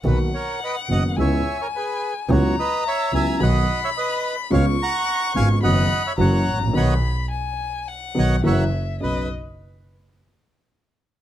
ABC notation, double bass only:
X:1
M:4/4
L:1/8
Q:1/4=107
K:B
V:1 name="Double bass" clef=bass
B,,, z2 F,,, C,, z3 | C,, z2 C,, B,,, z3 | C,, z2 G,,, F,,, z F,,, =A,,, | B,,, z4 B,,, F,,, z |
B,,, z6 z |]